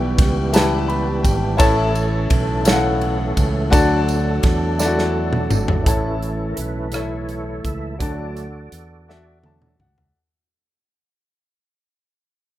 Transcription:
Already playing: fingered electric bass B1, upright piano B2 E4 G4 B4 G5, tonewheel organ E3 G3 B3 G4
0.18 fingered electric bass C#2, kick, snare, ride
0.52 upright piano E4 G4 B4 A5, snare, ride, tambourine
0.88 upright piano B5, ride
1.23 fingered electric bass G#1, upright piano G5, kick, ride, tambourine
1.57 fingered electric bass A1, upright piano A2 E4 A4 C#5 A5, tonewheel organ E3 A3 C#4 A4, kick, ride, tambourine
1.95 ride, tambourine
2.30 fingered electric bass B1, kick, ride
2.64 upright piano E4 A4 C#5 F5, snare, ride, tambourine
2.72 upright piano F#5
3.01 ride
3.37 fingered electric bass C#2, kick, ride, tambourine
3.70 fingered electric bass D2, upright piano D3 F#4 A4 D5 A5, tonewheel organ F#3 D4, kick, ride, tambourine
4.08 ride, tambourine
4.43 fingered electric bass E2, kick, snare, ride
4.78 upright piano E4 A4 D5 A5, snare, tambourine
4.85 upright piano F#4
4.99 snare
5.33 mid tom
5.50 fingered electric bass G#1, mid tom, tambourine
5.68 floor tom
5.82 tonewheel organ E3 A3 C#4 E4
5.86 fingered electric bass A1, upright piano A2 E4 A4 C#5 A5, tonewheel organ A4, kick, closed hi-hat
6.22 closed hi-hat
6.49 tonewheel organ A#4
6.56 fingered electric bass B1, tonewheel organ B4, closed hi-hat
6.92 tonewheel organ E4 A4 C#5, upright piano E4 A4 C#5 E5, cross-stick, closed hi-hat
7.29 closed hi-hat
7.65 fingered electric bass C#2, tonewheel organ E5, kick, closed hi-hat
7.98 fingered electric bass D2, upright piano D3 F#4 A4 D5 A5, tonewheel organ F#3 A3 D4 F#4 A4 D5, kick, closed hi-hat
8.37 closed hi-hat
8.72 fingered electric bass E2, closed hi-hat
9.08 upright piano F#4 A4 D5 E5, snare
9.43 tonewheel organ F#3 A3 D4, upright piano A5, high tom
9.62 mid tom
9.79 fingered electric bass C#2, upright piano F#5, mid tom
9.98 floor tom

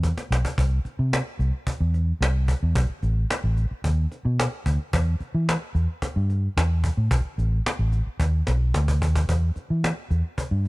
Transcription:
Already playing: fingered electric bass E2
0.03 cajon bass, cajon slap
0.18 cajon slap
0.31 fingered electric bass B1, cajon slap
0.45 cajon bass
0.58 fingered electric bass C2, cajon bass
0.85 muted fingered electric bass stroke, cajon slap
0.99 fingered electric bass C3
1.13 cajon slap
1.39 fingered electric bass C2, cajon slap
1.67 muted fingered electric bass stroke, cajon bass, cajon slap
1.80 fingered electric bass E2
1.94 cajon slap
2.21 fingered electric bass C2, cajon slap
2.48 cajon bass
2.63 fingered electric bass E2
2.75 fingered electric bass B1, cajon bass
3.03 fingered electric bass A1, cajon slap
3.30 cajon slap
3.44 fingered electric bass A1
3.57 cajon slap
3.71 muted fingered electric bass stroke
3.84 fingered electric bass D#2, cajon bass
4.12 cajon slap
4.25 fingered electric bass B2
4.40 cajon slap
4.66 fingered electric bass D2, cajon bass
4.93 fingered electric bass E2, cajon bass
5.20 muted fingered electric bass stroke, cajon slap
5.35 fingered electric bass E3
5.49 cajon slap
5.75 fingered electric bass E2, cajon slap
6.02 muted fingered electric bass stroke, cajon bass, cajon slap
6.16 fingered electric bass G2
6.30 cajon slap
6.57 fingered electric bass E2, cajon slap
6.84 cajon bass
6.97 fingered electric bass A2
7.11 fingered electric bass B1, cajon bass
7.25 muted fingered electric bass stroke
7.38 fingered electric bass A1, cajon slap
7.66 cajon slap
7.79 fingered electric bass A1
7.92 cajon slap
8.07 muted fingered electric bass stroke
8.20 fingered electric bass D#2, cajon bass, cajon slap
8.47 fingered electric bass B1, cajon slap
8.74 fingered electric bass D2, cajon slap
8.88 cajon bass
9.02 fingered electric bass D#2, cajon bass
9.16 cajon bass
9.29 fingered electric bass E2, cajon bass
9.56 muted fingered electric bass stroke, cajon slap
9.70 fingered electric bass E3
9.84 cajon slap
10.11 fingered electric bass E2, cajon slap
10.38 muted fingered electric bass stroke, cajon bass, cajon slap
10.51 fingered electric bass G2

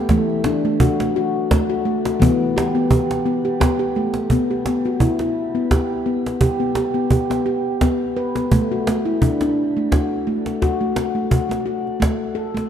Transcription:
0.09 handpan E3 A3, cajon bass, cajon slap
0.30 cajon slap
0.44 handpan D4, cajon slap
0.65 handpan A3, cajon slap
0.80 handpan F#4, cajon bass
1.00 handpan A3, cajon slap
1.16 handpan F#4, cajon slap
1.51 handpan A3, cajon bass, cajon slap
1.70 handpan F#4
1.85 handpan A3
2.05 handpan F#4, cajon slap
2.20 handpan E3 B3, cajon bass
2.57 handpan G4, cajon slap
2.75 handpan B3, cajon slap
2.91 handpan G4, cajon bass
3.11 cajon slap
3.26 handpan B3, cajon slap
3.45 handpan G4
3.60 handpan B3, cajon bass, cajon slap
3.79 handpan G4, cajon slap
3.95 handpan A3, cajon slap
4.14 cajon slap
4.30 handpan B3, cajon bass
4.50 handpan G4
4.66 handpan B3, cajon slap
4.85 handpan F#4, cajon slap
5.00 handpan E4, cajon bass
5.19 handpan E4, cajon slap
5.55 handpan B3
5.71 handpan G4, cajon bass, cajon slap
6.06 handpan B3
6.26 cajon slap
6.41 handpan G4, cajon bass
6.60 handpan B3
6.75 handpan G4, cajon slap
6.94 handpan B3, cajon slap
7.11 handpan G4, cajon bass
7.30 handpan B3, cajon slap
7.46 handpan G4
7.81 handpan B3, cajon bass, cajon slap
8.17 handpan B4
8.35 handpan B3, cajon slap
8.52 handpan A3, cajon bass
8.72 handpan F#4
8.87 handpan A3, cajon slap
9.05 handpan E4, cajon slap
9.21 handpan D4, cajon bass
9.41 handpan D4, cajon slap
9.77 handpan A3
9.92 handpan F#4, cajon bass, cajon slap
10.27 handpan A3
10.46 cajon slap
10.62 handpan F#4, cajon bass, cajon slap
10.81 handpan A3
10.96 handpan F#4, cajon slap
11.15 handpan A3
11.31 handpan F#4, cajon bass
11.49 handpan A3, cajon slap
11.66 handpan F#4, cajon slap
11.87 cajon slap
12.00 handpan A3, cajon bass, cajon slap
12.35 handpan A4
12.55 handpan A3, cajon slap

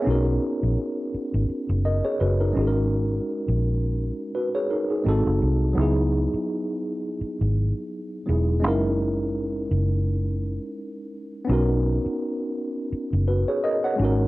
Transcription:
Already playing: tine electric piano G#4 C#5
0.02 tine electric piano B3 C#4
0.06 fingered electric bass B1, tine electric piano D#4 F#4
0.10 tine electric piano A#4
0.63 fingered electric bass A#1
1.14 muted fingered electric bass stroke
1.34 fingered electric bass G#1
1.49 muted fingered electric bass stroke
1.69 fingered electric bass F#1
1.85 tine electric piano A#4 D#5
2.05 tine electric piano G#4 C#5
2.20 fingered electric bass F#1, tine electric piano F#4 B4
2.40 tine electric piano D#4 A#4
2.53 fingered electric bass G#1, tine electric piano G#3 C#4 D#4
2.58 tine electric piano F#4 G#4
2.67 tine electric piano A#4
3.48 fingered electric bass A#1
4.35 tine electric piano F#4 B4
4.55 tine electric piano G#4 C#5
4.71 tine electric piano D#4 A#4
4.90 tine electric piano D#4 G#4
5.04 fingered electric bass G#1, tine electric piano G#3 C4 D#4 F#4
5.09 tine electric piano A4
5.27 fingered electric bass F#1
5.42 fingered electric bass C2
5.73 tine electric piano F#3 B3
5.77 fingered electric bass C#2, tine electric piano D#4 E4
5.81 tine electric piano G#4
6.34 muted fingered electric bass stroke
7.21 muted fingered electric bass stroke
7.41 fingered electric bass G#1
8.26 fingered electric bass E1, tine electric piano F#3 B3 D#4 E4 G#4
8.60 fingered electric bass F#1, tine electric piano G#3 C#4
8.64 tine electric piano D#4 E4 A#4
9.71 fingered electric bass F#1
11.45 tine electric piano B3 C#4
11.49 fingered electric bass B1, tine electric piano D#4 F#4 A#4
12.06 muted fingered electric bass stroke
12.92 muted fingered electric bass stroke
13.13 fingered electric bass F#1
13.28 tine electric piano F#4 B4
13.48 tine electric piano G#4 C#5
13.64 tine electric piano A#4 D#5
13.84 tine electric piano C#5 F#5
13.96 fingered electric bass G#1, tine electric piano G#3 C#4
14.00 tine electric piano D#4 F#4
14.04 tine electric piano A#4

